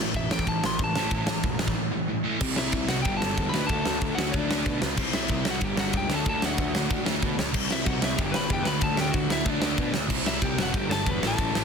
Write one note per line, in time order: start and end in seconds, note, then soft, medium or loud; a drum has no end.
0.00 0.12 A2 medium
0.00 0.13 E3 medium
0.14 0.28 E1 loud
0.14 0.29 A2 medium
0.14 0.29 E3 medium
0.14 0.32 E5 loud
0.14 kick loud
0.14 ride medium
0.30 0.44 A1 medium
0.30 0.45 A2 medium
0.30 0.45 E3 medium
0.30 0.48 G5 medium
0.30 snare loud
0.39 kick medium
0.46 0.61 A1 loud
0.46 0.60 A2 medium
0.46 0.61 E3 medium
0.46 0.64 A5 medium
0.46 kick loud
0.46 ride medium
0.62 0.77 A1 medium
0.62 0.77 A2 medium
0.62 0.78 E3 medium
0.62 snare loud
0.66 0.80 C6 medium
0.79 0.93 A1 medium
0.79 0.94 A2 medium
0.79 0.94 E3 loud
0.79 kick loud
0.79 ride medium
0.84 1.75 A5 loud
0.95 1.10 A1 loud
0.95 1.11 A2 medium
0.95 1.11 E3 medium
0.95 1.12 A3 loud
0.95 snare loud
1.11 1.39 A1 loud
1.11 1.27 A2 medium
1.11 1.27 E3 loud
1.11 1.28 A3 loud
1.11 kick loud
1.11 ride medium
1.27 1.42 A2 medium
1.27 1.43 E3 medium
1.27 snare loud
1.43 1.57 E1 loud
1.43 1.57 A2 medium
1.43 1.58 E3 medium
1.43 kick loud
1.43 ride medium
1.59 1.74 A1 loud
1.59 1.74 A2 medium
1.59 1.74 E3 medium
1.59 snare loud
1.68 kick loud
1.75 1.90 A2 medium
1.75 1.90 E3 medium
1.92 2.07 A2 medium
1.92 2.07 E3 medium
2.09 2.23 A2 medium
2.09 2.23 E3 loud
2.24 2.39 A2 loud
2.24 2.40 E3 medium
2.24 2.40 A3 loud
2.40 2.54 C2 loud
2.40 3.04 C3 medium
2.40 3.04 G3 loud
2.40 3.05 C4 loud
2.40 kick loud
2.40 crash loud
2.56 2.71 C2 loud
2.56 2.87 E4 medium
2.56 2.88 E5 medium
2.56 snare loud
2.72 2.86 C2 medium
2.72 kick loud
2.72 ride medium
2.88 3.02 C2 medium
2.88 3.05 F#4 medium
2.88 3.02 F#5 loud
2.88 snare loud
3.02 3.18 G1 loud
3.02 3.52 G2 loud
3.02 3.51 D3 medium
3.02 3.53 G3 loud
3.02 3.20 G4 medium
3.02 3.17 G5 loud
3.02 kick loud
3.02 ride medium
3.17 3.51 A4 medium
3.17 3.52 A5 loud
3.22 3.34 G1 medium
3.22 snare loud
3.38 3.51 E2 loud
3.38 kick loud
3.38 ride medium
3.49 3.66 D2 medium
3.49 4.32 D3 loud
3.49 3.68 B5 loud
3.54 4.33 A3 loud
3.54 4.33 D4 loud
3.54 3.68 B4 medium
3.54 snare loud
3.67 3.82 D2 loud
3.67 4.15 A5 medium
3.67 kick loud
3.67 ride medium
3.71 4.15 A4 medium
3.85 3.98 D2 medium
3.85 snare loud
4.01 4.14 D2 loud
4.01 kick loud
4.01 ride medium
4.15 4.30 D2 loud
4.15 4.32 F#4 medium
4.15 4.33 F#5 medium
4.15 snare loud
4.32 4.47 D2 medium
4.32 4.48 D3 medium
4.32 4.48 A3 medium
4.32 4.79 D4 medium
4.32 4.46 D4 medium
4.32 4.77 D5 medium
4.32 kick loud
4.32 ride medium
4.48 4.63 D2 medium
4.48 4.81 D3 medium
4.48 4.80 A3 loud
4.48 4.79 D4 loud
4.48 snare loud
4.66 4.79 B2 loud
4.66 kick loud
4.66 ride medium
4.82 4.94 C#2 loud
4.82 snare loud
4.96 5.10 C2 loud
4.96 5.60 C3 medium
4.96 5.60 G3 loud
4.96 5.61 C4 loud
4.96 kick loud
4.96 crash loud
5.13 5.26 C2 medium
5.13 5.44 E4 medium
5.13 5.47 E5 medium
5.13 snare loud
5.28 5.42 C2 loud
5.28 kick loud
5.28 ride medium
5.45 5.58 C2 loud
5.45 5.62 F#4 medium
5.45 snare loud
5.51 5.64 F#5 medium
5.60 5.75 G1 loud
5.60 6.08 G2 medium
5.60 6.08 D3 loud
5.60 6.09 G3 medium
5.60 5.77 G4 medium
5.60 kick loud
5.60 ride medium
5.64 5.79 G5 medium
5.77 5.90 G1 medium
5.77 5.93 F#4 medium
5.77 5.95 F#5 loud
5.77 snare loud
5.93 6.07 C#2 loud
5.93 6.08 G4 medium
5.93 kick loud
5.93 ride medium
5.97 6.14 G5 loud
6.09 6.22 D2 loud
6.09 6.88 D3 medium
6.09 6.89 A3 medium
6.09 6.90 D4 loud
6.09 6.25 A4 medium
6.09 snare loud
6.14 6.28 A5 loud
6.26 6.39 D2 loud
6.26 6.41 A4 medium
6.26 6.44 A5 loud
6.26 kick loud
6.26 ride medium
6.42 6.55 D2 loud
6.42 7.02 F#4 medium
6.42 7.03 F#5 loud
6.42 snare loud
6.58 6.71 D2 loud
6.58 kick loud
6.58 ride medium
6.75 6.87 D2 medium
6.75 snare loud
6.89 7.03 D2 loud
6.89 7.04 D3 medium
6.89 7.05 A3 medium
6.89 7.04 D4 medium
6.89 kick loud
6.89 ride medium
7.05 7.19 D2 medium
7.05 7.38 D3 medium
7.05 7.37 A3 medium
7.05 7.36 D4 medium
7.05 snare loud
7.22 7.35 B2 medium
7.22 kick loud
7.22 ride medium
7.38 7.51 C#2 medium
7.38 snare loud
7.53 7.67 C2 loud
7.53 8.16 C3 medium
7.53 8.17 G3 loud
7.53 8.18 C4 loud
7.53 kick loud
7.53 crash loud
7.71 7.83 C2 medium
7.71 7.85 E4 medium
7.71 7.88 E5 medium
7.71 snare loud
7.85 7.99 C2 medium
7.85 8.00 F#4 medium
7.85 8.03 F#5 loud
7.85 kick loud
7.85 ride medium
8.02 8.14 C2 medium
8.02 8.16 E4 medium
8.02 8.19 E5 medium
8.02 snare loud
8.16 8.31 G1 medium
8.16 8.64 G2 medium
8.16 8.63 D3 medium
8.16 8.65 G3 loud
8.16 8.32 G4 medium
8.16 8.34 G5 loud
8.16 kick loud
8.16 ride medium
8.32 8.47 G1 medium
8.32 8.48 B4 medium
8.32 8.51 B5 loud
8.32 snare loud
8.49 8.63 E2 loud
8.49 8.64 G4 medium
8.49 8.68 G5 loud
8.49 kick loud
8.49 ride medium
8.63 8.79 D2 loud
8.63 9.44 D3 medium
8.63 9.45 A3 loud
8.63 8.79 B4 medium
8.63 snare loud
8.67 9.45 D4 loud
8.67 8.83 B5 loud
8.80 8.95 D2 loud
8.80 8.96 A4 medium
8.80 8.99 A5 loud
8.80 kick loud
8.80 ride medium
8.97 9.10 D2 medium
8.97 9.11 G4 medium
8.97 9.14 G5 medium
8.97 snare loud
9.12 9.27 D2 loud
9.12 9.28 F#4 medium
9.12 9.30 F#5 loud
9.12 kick loud
9.12 ride medium
9.29 9.42 D2 medium
9.29 9.45 E4 medium
9.29 9.50 E5 medium
9.29 snare loud
9.45 9.59 D2 medium
9.45 9.61 D3 medium
9.45 9.59 A3 medium
9.45 9.91 D4 medium
9.45 9.58 D4 medium
9.45 kick loud
9.45 ride medium
9.50 9.96 D5 medium
9.59 9.74 D2 medium
9.59 9.93 D3 medium
9.59 9.92 A3 medium
9.59 9.92 D4 loud
9.59 snare loud
9.78 9.91 B2 loud
9.78 kick loud
9.78 ride medium
9.92 10.05 D2 medium
9.92 snare loud
10.08 10.23 C2 loud
10.08 10.72 C3 medium
10.08 10.73 G3 loud
10.08 10.73 C4 loud
10.08 kick loud
10.08 crash loud
10.24 10.38 C2 loud
10.24 10.42 E4 medium
10.24 10.43 E5 medium
10.24 snare loud
10.42 10.55 C2 loud
10.42 10.57 G4 medium
10.42 10.59 G5 loud
10.42 kick loud
10.42 ride medium
10.57 10.70 F#1 loud
10.57 snare loud
10.61 10.74 F#4 medium
10.61 10.77 F#5 medium
10.72 10.87 G1 medium
10.72 11.20 G2 medium
10.72 11.20 D3 loud
10.72 11.22 G3 loud
10.72 10.89 G4 medium
10.72 kick loud
10.72 ride medium
10.77 10.92 G5 medium
10.89 11.03 G1 loud
10.89 11.05 A4 medium
10.89 11.11 A5 loud
10.89 snare loud
11.06 11.19 E2 loud
11.06 11.22 B4 medium
11.06 kick loud
11.06 ride medium
11.11 11.25 B5 loud
11.20 11.34 A1 loud
11.20 11.64 A2 medium
11.20 11.64 E3 loud
11.20 11.64 A3 loud
11.20 snare loud
11.25 11.64 A4 medium
11.25 11.64 A5 loud
11.38 11.51 A1 loud
11.38 kick loud
11.38 ride medium
11.53 11.64 A1 medium
11.53 snare loud